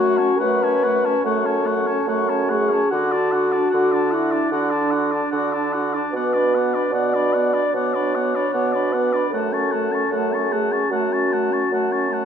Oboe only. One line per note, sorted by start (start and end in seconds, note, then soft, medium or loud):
0.00 0.19 F#5 medium
0.18 0.39 C#5 medium
0.40 0.65 F#5 medium
0.64 0.85 C#5 medium
0.84 1.07 F#5 medium
1.05 1.25 C#5 medium
1.25 1.47 F#5 medium
1.46 1.68 C#5 medium
1.66 1.88 F#5 medium
1.87 2.07 C#5 medium
2.08 2.31 F#5 medium
2.29 2.50 C#5 soft
2.49 2.71 F#5 medium
2.69 2.90 C#5 medium
2.90 3.13 F#5 medium
3.12 3.34 D5 medium
3.32 3.53 F#5 medium
3.52 3.70 D5 medium
3.70 3.94 F#5 medium
3.92 4.13 D5 medium
4.11 4.33 F#5 medium
4.31 4.51 D5 soft
4.52 4.72 F#5 medium
4.70 4.92 D5 medium
4.91 5.13 F#5 medium
5.11 5.31 D5 soft
5.32 5.54 F#5 medium
5.53 5.74 D5 soft
5.73 5.95 F#5 medium
5.94 6.13 D5 soft
6.16 6.35 F#5 medium
6.33 6.56 D5 soft
6.55 6.76 F#5 medium
6.74 6.93 D5 medium
6.94 7.15 F#5 medium
7.14 7.35 D5 soft
7.33 7.55 F#5 medium
7.54 7.74 D5 soft
7.76 7.95 F#5 medium
7.94 8.16 D5 soft
8.15 8.37 F#5 medium
8.35 8.53 D5 soft
8.53 8.74 F#5 medium
8.72 8.94 D5 soft
8.93 9.14 F#5 soft
9.13 9.32 D5 soft
9.33 9.54 F#5 medium
9.53 9.72 A5 soft
9.71 9.93 F#5 medium
9.92 10.11 A5 soft
10.12 10.34 F#5 medium
10.32 10.54 A5 soft
10.52 10.74 F#5 medium
10.72 10.92 A5 soft
10.92 11.14 F#5 medium
11.13 11.34 A5 soft
11.33 11.54 F#5 soft
11.53 11.72 A5 soft
11.74 11.94 F#5 medium
11.92 12.14 A5 soft
12.13 12.25 F#5 medium